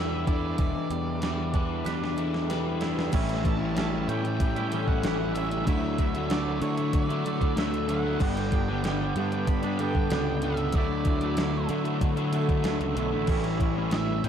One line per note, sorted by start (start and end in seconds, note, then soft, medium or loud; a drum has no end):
0.00 0.55 E2 medium
0.00 0.31 E3 medium
0.00 0.90 G3 medium
0.00 0.26 D4 medium
0.00 1.23 D4 medium
0.00 1.22 E4 medium
0.00 0.27 G4 medium
0.00 0.26 A4 medium
0.00 0.91 B4 medium
0.00 1.54 B4 medium
0.00 0.28 E5 medium
0.27 1.85 D4 medium
0.27 1.86 E4 medium
0.27 0.58 A4 medium
0.27 2.46 D5 medium
0.27 kick medium
0.27 closed hi-hat medium
0.58 0.74 E1 loud
0.58 2.18 E3 medium
0.58 0.91 E4 medium
0.58 kick loud
0.58 closed hi-hat medium
0.90 1.82 E2 medium
0.90 1.22 G3 medium
0.90 1.53 G4 medium
0.90 closed hi-hat medium
1.22 2.48 G3 medium
1.22 2.18 E4 medium
1.22 snare loud
1.22 closed hi-hat medium
1.53 2.16 D4 medium
1.53 1.84 F#4 medium
1.53 2.49 B4 medium
1.53 kick medium
1.53 closed hi-hat medium
1.85 3.09 E2 medium
1.85 2.80 D4 medium
1.85 2.16 G4 medium
1.85 3.13 B4 medium
1.85 snare medium
1.85 closed hi-hat loud
2.04 snare medium
2.17 3.13 D4 medium
2.17 3.14 E4 medium
2.17 2.79 A4 medium
2.17 closed hi-hat medium
2.34 snare medium
2.49 3.13 G3 medium
2.49 3.14 B4 medium
2.49 snare medium
2.49 closed hi-hat medium
2.80 3.13 D4 medium
2.80 3.13 E4 medium
2.80 3.13 A4 medium
2.80 snare loud
2.80 closed hi-hat medium
2.99 snare medium
3.12 4.04 A1 medium
3.12 3.74 A2 medium
3.12 3.44 E3 medium
3.12 3.44 G3 medium
3.12 3.45 C#4 loud
3.12 5.67 E4 loud
3.12 3.46 E4 loud
3.12 kick loud
3.12 closed hi-hat loud
3.12 crash loud
3.29 3.61 G3 medium
3.29 3.61 C#4 medium
3.29 3.60 E4 medium
3.29 closed hi-hat soft
3.44 3.76 E3 medium
3.44 3.61 G3 medium
3.44 3.60 C#4 medium
3.44 3.59 E4 medium
3.44 4.07 G4 medium
3.44 3.75 A5 loud
3.44 kick medium
3.44 snare soft
3.44 closed hi-hat medium
3.59 3.76 G3 medium
3.59 3.77 C#4 medium
3.59 3.78 E4 medium
3.76 4.40 A2 medium
3.76 4.07 E3 medium
3.76 4.08 G3 loud
3.76 4.09 C#4 medium
3.76 4.10 E4 loud
3.76 4.08 A5 medium
3.76 snare loud
3.76 closed hi-hat medium
4.08 4.99 A2 medium
4.08 4.56 E3 medium
4.08 4.26 G3 medium
4.08 4.25 C#4 medium
4.08 4.23 E4 medium
4.08 4.39 G4 medium
4.08 4.88 G5 medium
4.08 closed hi-hat medium
4.24 4.58 G3 medium
4.24 4.56 C#4 medium
4.24 4.54 E4 medium
4.24 closed hi-hat soft
4.40 4.71 G4 medium
4.40 kick loud
4.40 closed hi-hat medium
4.56 4.72 G3 medium
4.56 4.73 C#4 medium
4.56 4.74 E4 medium
4.56 closed hi-hat soft
4.71 5.04 E3 medium
4.71 5.05 G3 medium
4.71 5.05 C#4 medium
4.71 5.06 E4 medium
4.71 5.34 A4 medium
4.71 closed hi-hat medium
4.88 5.04 G3 medium
4.88 5.04 C#4 medium
4.88 5.04 E4 medium
4.88 5.32 F#5 medium
4.88 kick medium
5.03 5.63 A1 medium
5.03 5.51 A2 loud
5.03 5.34 E3 loud
5.03 5.21 G3 loud
5.03 5.19 C#4 loud
5.03 5.18 E4 loud
5.03 snare loud
5.03 closed hi-hat loud
5.19 5.35 G3 medium
5.19 5.36 C#4 medium
5.19 5.37 E4 medium
5.34 5.65 E3 medium
5.34 5.53 G3 medium
5.34 5.51 C#4 medium
5.34 5.50 E4 medium
5.34 5.66 A4 medium
5.34 5.65 E5 medium
5.34 closed hi-hat medium
5.51 5.66 G3 medium
5.51 5.66 C#4 medium
5.51 5.65 E4 medium
5.51 closed hi-hat medium
5.66 6.58 D2 medium
5.66 5.98 D3 loud
5.66 5.99 F#3 loud
5.66 5.99 A3 loud
5.66 5.82 D4 loud
5.66 5.99 E4 loud
5.66 6.00 E4 loud
5.66 6.32 E5 loud
5.66 kick loud
5.66 closed hi-hat loud
5.82 6.15 F#3 medium
5.82 6.14 A3 medium
5.82 6.14 D4 medium
5.98 6.28 D3 medium
5.98 6.16 F#3 medium
5.98 6.14 A3 medium
5.98 6.13 E4 medium
5.98 6.62 F#4 medium
5.98 kick medium
5.98 closed hi-hat medium
6.14 6.30 F#3 medium
6.14 6.31 A3 medium
6.14 6.31 D4 medium
6.14 6.32 E4 medium
6.14 closed hi-hat soft
6.30 6.60 D3 medium
6.30 6.61 F#3 medium
6.30 6.62 A3 loud
6.30 6.64 D4 medium
6.30 6.62 E4 loud
6.30 6.62 D5 medium
6.30 snare loud
6.30 closed hi-hat loud
6.61 7.09 D3 medium
6.61 7.53 D3 loud
6.61 6.78 F#3 medium
6.61 6.76 A3 medium
6.61 6.77 D4 medium
6.61 6.93 E4 medium
6.61 6.75 E4 medium
6.61 6.94 C#5 medium
6.61 closed hi-hat medium
6.76 7.11 F#3 medium
6.76 7.10 A3 medium
6.76 7.09 D4 medium
6.76 7.08 E4 medium
6.76 closed hi-hat medium
6.93 7.25 F#4 medium
6.93 7.06 C#5 medium
6.93 kick loud
6.93 closed hi-hat loud
7.06 7.27 D4 medium
7.06 7.27 E4 medium
7.06 7.58 D5 medium
7.10 7.25 F#3 medium
7.10 7.26 A3 medium
7.10 closed hi-hat medium
7.25 7.56 D3 medium
7.25 7.57 F#3 medium
7.25 7.57 A3 medium
7.25 7.40 D4 medium
7.25 7.58 E4 medium
7.25 7.87 A4 medium
7.25 closed hi-hat medium
7.40 7.56 F#3 medium
7.40 7.57 A3 medium
7.40 7.58 D4 medium
7.40 kick medium
7.40 closed hi-hat soft
7.57 8.17 D2 medium
7.57 7.87 D3 medium
7.57 7.75 F#3 loud
7.57 7.73 A3 loud
7.57 7.90 D4 loud
7.57 7.71 E4 loud
7.57 7.90 E5 loud
7.57 snare loud
7.57 closed hi-hat loud
7.73 7.88 F#3 medium
7.73 7.89 A3 medium
7.73 7.90 E4 medium
7.73 closed hi-hat soft
7.88 8.18 D3 medium
7.88 8.05 F#3 medium
7.88 8.03 A3 medium
7.88 8.05 D4 medium
7.88 8.02 E4 medium
7.88 8.19 A4 medium
7.88 8.21 F#5 medium
7.88 closed hi-hat medium
8.03 8.19 F#3 medium
8.03 8.19 A3 medium
8.03 8.22 D4 medium
8.03 8.18 E4 medium
8.19 9.12 G1 medium
8.19 8.83 G2 medium
8.19 8.50 D3 medium
8.19 8.51 G3 loud
8.19 8.52 B3 loud
8.19 8.54 D4 loud
8.19 8.50 G4 medium
8.19 8.33 F#5 loud
8.19 kick loud
8.19 crash loud
8.33 8.67 D4 medium
8.33 9.52 G5 loud
8.37 8.69 G3 medium
8.37 8.67 B3 medium
8.37 closed hi-hat medium
8.51 8.84 D3 medium
8.51 8.70 G3 medium
8.51 8.69 B3 medium
8.51 8.68 D4 medium
8.51 9.14 G4 medium
8.51 kick medium
8.51 snare soft
8.51 closed hi-hat medium
8.68 8.85 G3 medium
8.68 8.86 B3 medium
8.68 8.87 D4 medium
8.84 9.48 G2 medium
8.84 9.16 D3 medium
8.84 9.16 G3 medium
8.84 9.18 B3 loud
8.84 9.20 D4 medium
8.84 snare loud
8.84 closed hi-hat medium
9.16 10.07 G2 loud
9.16 9.64 D3 medium
9.16 9.34 G3 medium
9.16 9.32 B3 medium
9.16 9.47 G4 medium
9.16 closed hi-hat medium
9.20 9.31 D4 medium
9.32 9.66 G3 medium
9.32 9.65 B3 medium
9.32 9.63 D4 medium
9.32 closed hi-hat soft
9.47 9.79 G4 medium
9.47 9.81 B5 loud
9.47 kick loud
9.47 closed hi-hat loud
9.63 9.81 B3 medium
9.63 9.82 D4 medium
9.63 closed hi-hat medium
9.67 9.81 G3 medium
9.79 10.10 D3 medium
9.79 10.11 G3 medium
9.79 10.12 B3 medium
9.79 10.41 A4 medium
9.79 10.45 G5 loud
9.79 closed hi-hat medium
9.83 10.13 D4 medium
9.95 10.10 G3 medium
9.95 10.11 B3 medium
9.95 10.11 D4 medium
9.95 kick medium
10.10 10.71 C#2 loud
10.10 10.59 G2 loud
10.10 10.42 D3 loud
10.10 10.29 G3 loud
10.10 10.28 B3 loud
10.10 10.26 D4 loud
10.10 snare loud
10.10 closed hi-hat loud
10.27 10.43 G3 medium
10.27 10.44 B3 medium
10.27 10.45 D4 medium
10.42 10.73 D3 medium
10.42 10.61 G3 medium
10.42 10.59 B3 medium
10.42 10.74 A4 medium
10.42 10.76 E5 medium
10.42 closed hi-hat medium
10.46 10.57 D4 medium
10.57 10.74 B3 medium
10.57 10.73 D4 medium
10.57 closed hi-hat soft
10.62 10.74 G3 medium
10.72 11.65 D2 medium
10.72 11.05 D3 medium
10.72 11.06 F#3 medium
10.72 11.07 E4 medium
10.72 11.67 D5 medium
10.72 kick loud
10.72 closed hi-hat loud
10.77 11.07 A3 loud
10.77 10.88 D4 loud
10.77 11.09 E4 loud
10.90 11.22 F#3 medium
10.90 11.22 A3 medium
10.90 11.20 D4 medium
11.05 11.37 D3 medium
11.05 11.24 F#3 medium
11.05 11.24 A3 medium
11.05 11.69 F#4 medium
11.05 kick medium
11.05 closed hi-hat medium
11.09 11.22 E4 medium
11.21 11.40 A3 medium
11.21 11.37 D4 medium
11.21 11.41 E4 medium
11.21 closed hi-hat soft
11.26 11.38 F#3 medium
11.37 11.68 D3 medium
11.37 11.69 F#3 medium
11.37 11.71 A3 medium
11.37 11.69 D4 medium
11.37 snare loud
11.37 closed hi-hat loud
11.41 11.72 E4 loud
11.69 12.17 D3 medium
11.69 12.61 D3 loud
11.69 11.87 F#3 medium
11.69 11.86 A3 medium
11.69 11.82 D4 medium
11.69 12.00 E4 medium
11.69 11.84 E4 medium
11.69 closed hi-hat medium
11.83 12.18 A3 medium
11.83 12.14 D4 medium
11.83 12.16 E4 medium
11.83 closed hi-hat medium
11.88 12.19 F#3 medium
12.01 12.33 F#4 medium
12.01 kick loud
12.01 closed hi-hat loud
12.15 12.35 A3 medium
12.15 12.32 D4 medium
12.15 12.36 E4 medium
12.15 closed hi-hat medium
12.20 12.33 F#3 medium
12.33 12.64 D3 medium
12.33 12.65 F#3 medium
12.33 12.67 A3 medium
12.33 12.46 D4 medium
12.33 12.68 E4 medium
12.33 12.97 A4 medium
12.33 closed hi-hat medium
12.47 12.62 F#3 medium
12.47 12.64 A3 medium
12.47 12.64 D4 medium
12.47 kick medium
12.47 closed hi-hat soft
12.64 12.79 D2 medium
12.64 12.96 D3 loud
12.64 12.82 F#3 loud
12.64 12.82 A3 loud
12.64 12.96 D4 loud
12.64 snare loud
12.64 closed hi-hat loud
12.68 12.80 E4 loud
12.80 12.95 C#2 medium
12.80 12.97 F#3 medium
12.80 12.98 A3 medium
12.80 13.00 E4 medium
12.80 closed hi-hat medium
12.96 13.11 B1 medium
12.96 13.27 D3 medium
12.96 13.14 F#3 medium
12.96 13.14 A3 medium
12.96 13.09 D4 medium
12.96 13.60 A4 medium
12.96 closed hi-hat medium
13.00 13.12 E4 medium
13.11 13.27 A1 medium
13.11 13.30 A3 medium
13.11 13.26 D4 medium
13.11 13.31 E4 medium
13.15 13.28 F#3 medium
13.27 14.19 A1 medium
13.27 13.91 A2 loud
13.27 13.60 E3 medium
13.27 13.60 G3 loud
13.27 13.61 C#4 loud
13.27 14.29 E4 medium
13.27 kick loud
13.27 crash loud
13.32 13.63 E4 loud
13.43 13.76 G3 medium
13.43 13.75 C#4 medium
13.43 13.75 E4 medium
13.43 closed hi-hat soft
13.60 13.93 E3 medium
13.60 13.79 G3 medium
13.60 13.77 C#4 medium
13.60 13.76 E4 medium
13.60 14.23 G4 medium
13.60 kick medium
13.60 snare soft
13.60 closed hi-hat medium
13.77 13.92 G3 medium
13.77 13.93 C#4 medium
13.77 13.94 E4 medium
13.91 14.29 A2 medium
13.91 14.23 E3 medium
13.91 14.24 G3 medium
13.91 14.24 C#4 medium
13.91 14.26 E4 medium
13.91 14.25 E5 medium
13.91 snare loud
13.91 closed hi-hat loud
14.24 14.29 A2 loud
14.24 14.29 E3 medium
14.24 14.29 G3 medium
14.24 14.29 C#4 medium
14.24 14.29 E4 medium
14.24 14.29 G4 medium
14.24 14.29 G5 medium
14.24 closed hi-hat medium